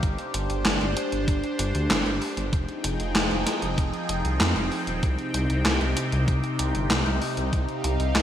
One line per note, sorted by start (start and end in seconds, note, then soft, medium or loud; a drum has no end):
0.00 0.17 G1 loud
0.00 2.50 D4 medium
0.00 2.49 G4 medium
0.00 2.50 C5 medium
0.00 kick loud
0.00 closed hi-hat medium
0.18 closed hi-hat soft
0.34 0.48 G1 medium
0.34 closed hi-hat medium
0.50 0.64 G1 medium
0.50 closed hi-hat medium
0.65 0.79 G1 loud
0.65 snare loud
0.65 clap loud
0.65 closed hi-hat medium
0.81 0.95 G1 medium
0.81 closed hi-hat soft
0.97 closed hi-hat medium
1.12 1.26 G1 medium
1.12 closed hi-hat medium
1.28 1.42 G1 loud
1.28 kick loud
1.28 closed hi-hat medium
1.44 closed hi-hat soft
1.59 1.73 G1 medium
1.59 closed hi-hat medium
1.75 1.89 D2 medium
1.75 closed hi-hat medium
1.90 2.04 G1 loud
1.90 snare loud
1.90 clap loud
1.90 closed hi-hat medium
2.06 2.20 G1 medium
2.06 closed hi-hat soft
2.22 open hi-hat medium
2.37 2.51 G1 medium
2.37 closed hi-hat medium
2.53 2.67 F1 loud
2.53 5.00 F3 medium
2.53 8.22 C4 medium
2.53 5.00 D#4 medium
2.53 5.00 G#4 medium
2.53 7.49 G5 medium
2.53 kick loud
2.53 closed hi-hat medium
2.69 closed hi-hat soft
2.84 2.98 F1 medium
2.84 closed hi-hat medium
3.00 3.14 F1 medium
3.00 closed hi-hat soft
3.15 3.29 F1 loud
3.15 snare loud
3.15 clap loud
3.15 closed hi-hat medium
3.31 3.45 F1 medium
3.31 closed hi-hat soft
3.47 snare medium
3.47 closed hi-hat medium
3.62 3.76 F1 medium
3.62 closed hi-hat medium
3.78 3.92 F1 loud
3.78 kick loud
3.78 closed hi-hat medium
3.94 closed hi-hat soft
4.09 4.23 F1 medium
4.09 closed hi-hat medium
4.25 4.39 C2 medium
4.25 closed hi-hat medium
4.40 4.54 F2 loud
4.40 snare loud
4.40 clap medium
4.40 closed hi-hat medium
4.56 4.70 F1 medium
4.56 closed hi-hat soft
4.72 open hi-hat medium
4.87 5.01 D#1 medium
4.87 closed hi-hat medium
5.03 5.17 C2 loud
5.03 8.22 C3 medium
5.03 8.22 D#4 medium
5.03 8.22 G4 medium
5.03 kick loud
5.03 closed hi-hat soft
5.19 closed hi-hat soft
5.34 5.48 C2 medium
5.34 closed hi-hat medium
5.50 5.64 C2 medium
5.50 closed hi-hat soft
5.65 5.79 C2 loud
5.65 snare loud
5.65 clap loud
5.65 closed hi-hat medium
5.81 5.95 C2 medium
5.81 closed hi-hat soft
5.97 closed hi-hat medium
6.12 6.26 C2 medium
6.12 closed hi-hat medium
6.28 6.42 C2 loud
6.28 kick loud
6.28 closed hi-hat medium
6.44 closed hi-hat soft
6.59 6.73 C2 medium
6.59 closed hi-hat medium
6.75 6.89 G1 medium
6.75 closed hi-hat medium
6.90 7.04 C2 loud
6.90 snare loud
6.90 clap medium
6.90 closed hi-hat medium
7.06 7.20 C2 medium
7.06 closed hi-hat soft
7.22 open hi-hat medium
7.37 7.51 C2 medium
7.37 closed hi-hat medium
7.53 7.67 C2 loud
7.53 8.22 F5 medium
7.53 kick loud
7.53 closed hi-hat medium
7.69 closed hi-hat soft
7.84 7.98 C2 loud
7.84 closed hi-hat medium
8.00 8.14 C2 medium
8.00 closed hi-hat soft
8.15 8.22 C2 loud
8.15 snare loud
8.15 clap loud
8.15 closed hi-hat medium